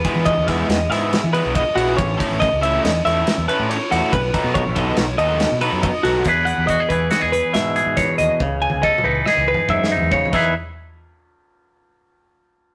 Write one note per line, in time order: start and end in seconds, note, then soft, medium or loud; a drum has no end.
0.00 0.26 B4 medium
0.04 0.34 G#3 medium
0.04 0.34 B3 medium
0.04 0.33 E4 medium
0.04 0.33 G#4 medium
0.04 kick medium
0.04 ride medium
0.15 0.38 E3 medium
0.25 0.47 D#5 medium
0.25 kick loud
0.25 ride loud
0.36 0.62 E2 medium
0.47 0.77 G#3 medium
0.47 0.77 B3 medium
0.47 0.76 E4 medium
0.47 0.76 G#4 medium
0.47 0.68 E5 medium
0.47 kick medium
0.47 snare soft
0.47 ride medium
0.68 0.86 E2 medium
0.68 0.90 D#5 medium
0.68 snare loud
0.68 ride loud
0.89 1.15 G#2 medium
0.89 1.19 G#3 medium
0.89 1.19 B3 medium
0.89 1.19 E4 medium
0.89 1.18 G#4 loud
0.89 1.33 E5 medium
0.89 snare soft
0.89 ride medium
1.13 snare loud
1.13 ride loud
1.24 1.40 E3 medium
1.33 1.62 G#3 medium
1.33 1.62 B3 medium
1.33 1.61 E4 medium
1.33 1.61 G#4 medium
1.33 1.55 B4 medium
1.33 ride medium
1.45 1.62 B1 loud
1.55 1.76 D#5 medium
1.55 kick loud
1.55 ride loud
1.75 1.93 A#1 loud
1.75 1.98 G#3 medium
1.75 1.98 B3 loud
1.75 1.98 E4 medium
1.75 1.97 F#4 medium
1.75 1.97 G#4 loud
1.75 ride medium
1.97 2.15 A1 loud
1.97 2.40 C#5 medium
1.97 kick loud
1.97 ride loud
2.18 2.47 A3 medium
2.18 2.47 C#4 medium
2.18 2.47 E4 loud
2.18 2.47 A4 loud
2.18 kick medium
2.18 ride medium
2.31 2.47 A1 medium
2.40 2.62 D#5 medium
2.40 kick loud
2.40 snare soft
2.40 ride loud
2.52 2.77 C#2 medium
2.62 2.90 A3 medium
2.62 2.90 C#4 medium
2.62 2.90 E4 medium
2.62 2.90 A4 medium
2.62 2.84 E5 medium
2.62 ride medium
2.84 3.01 E2 loud
2.84 3.05 D#5 medium
2.84 snare loud
2.84 ride loud
3.05 3.22 E2 medium
3.05 3.34 A3 medium
3.05 3.33 C#4 medium
3.05 3.33 E4 medium
3.05 3.33 A4 loud
3.05 3.48 E5 medium
3.05 snare soft
3.05 ride medium
3.27 snare loud
3.27 ride loud
3.38 3.46 E2 loud
3.48 3.76 A3 medium
3.48 3.76 C#4 medium
3.48 3.76 E4 medium
3.48 3.76 A4 medium
3.48 3.69 B4 medium
3.48 ride medium
3.59 3.76 A2 loud
3.69 3.91 C#5 medium
3.69 ride loud
3.90 4.00 E2 loud
3.90 4.12 A3 medium
3.90 4.12 C#4 medium
3.90 4.12 E4 medium
3.90 4.12 F#4 medium
3.90 4.12 A4 loud
3.90 snare soft
3.90 ride medium
4.13 4.30 B1 loud
4.13 4.54 B4 medium
4.13 kick loud
4.13 ride loud
4.34 4.62 F#3 medium
4.34 4.62 B3 medium
4.34 4.61 D#4 loud
4.34 4.61 A4 medium
4.34 kick medium
4.34 ride medium
4.44 4.67 B2 medium
4.54 4.77 C#5 medium
4.54 kick loud
4.54 ride loud
4.65 4.91 B1 medium
4.76 5.04 F#3 medium
4.76 5.04 B3 medium
4.76 5.04 D#4 medium
4.76 5.04 A4 medium
4.76 4.97 D#5 medium
4.76 kick medium
4.76 ride medium
4.97 5.14 B1 medium
4.97 5.18 C#5 medium
4.97 snare loud
4.97 ride loud
5.18 5.44 D#2 medium
5.18 5.47 F#3 medium
5.18 5.47 B3 medium
5.18 5.47 D#4 medium
5.18 5.47 A4 loud
5.18 5.61 D#5 medium
5.18 ride medium
5.40 snare loud
5.40 ride loud
5.52 5.68 B2 medium
5.61 5.90 F#3 medium
5.61 5.90 B3 medium
5.61 5.90 D#4 medium
5.61 5.89 A4 medium
5.61 5.83 B4 medium
5.61 ride medium
5.72 5.89 F#2 medium
5.83 6.04 D#5 medium
5.83 kick loud
5.83 ride loud
6.03 6.21 B1 loud
6.03 6.26 F#3 medium
6.03 6.26 B3 medium
6.03 6.26 D#4 medium
6.03 6.25 F#4 medium
6.03 6.26 A4 loud
6.03 snare soft
6.03 ride medium
6.25 6.51 E2 medium
6.25 7.96 E2 medium
6.25 6.91 E3 medium
6.25 6.80 G#4 medium
6.25 kick loud
6.25 closed hi-hat medium
6.29 6.69 B4 medium
6.45 6.67 F#5 medium
6.45 closed hi-hat medium
6.58 6.75 E2 medium
6.67 6.80 F#4 medium
6.67 6.89 D#5 medium
6.67 kick medium
6.67 closed hi-hat medium
6.80 6.91 G#4 soft
6.89 7.07 E2 medium
6.89 9.03 E3 medium
6.89 7.22 G#4 medium
6.89 7.11 B4 medium
6.89 kick medium
6.89 closed hi-hat medium
7.11 7.22 F#4 medium
7.11 7.32 D#5 medium
7.11 snare loud
7.11 closed hi-hat medium
7.22 7.39 E2 medium
7.22 7.75 G#4 medium
7.32 7.54 B4 medium
7.32 closed hi-hat medium
7.53 7.80 G#2 loud
7.53 8.40 B2 medium
7.53 7.97 E5 medium
7.53 snare loud
7.53 closed hi-hat medium
7.76 8.87 G#4 medium
7.76 closed hi-hat medium
7.86 8.03 G#2 medium
7.97 8.40 E2 medium
7.97 8.18 C#5 medium
7.97 kick loud
7.97 snare soft
7.97 closed hi-hat medium
8.18 8.27 D#2 medium
8.18 8.40 D#5 medium
8.18 closed hi-hat medium
8.40 8.66 C#2 medium
8.40 9.05 C#3 medium
8.40 kick loud
8.40 high tom medium
8.62 8.83 G#5 medium
8.70 8.89 C#2 medium
8.70 high tom medium
8.83 9.26 A4 medium
8.83 9.04 D#5 medium
8.83 kick loud
8.98 mid tom medium
9.04 9.21 C#2 medium
9.04 10.33 E3 medium
9.04 9.90 D#4 medium
9.04 9.26 B4 medium
9.26 10.34 G#4 medium
9.26 9.47 D#5 medium
9.26 snare medium
9.37 9.54 C#2 medium
9.48 9.69 B4 medium
9.54 mid tom medium
9.68 9.94 F#2 loud
9.68 10.32 G#2 medium
9.68 10.12 E5 medium
9.68 kick medium
9.84 snare medium
9.92 10.33 D#4 medium
9.97 floor tom medium
10.02 10.18 E2 medium
10.11 10.34 C#3 medium
10.11 10.33 C#5 medium
10.11 kick loud
10.11 floor tom medium
10.25 floor tom medium
10.33 10.52 E2 medium
10.33 10.53 E2 loud
10.33 10.53 E3 medium
10.33 10.53 D#4 medium
10.33 10.53 E4 medium
10.33 10.54 G#4 medium
10.33 10.54 B4 soft
10.33 kick loud
10.33 crash medium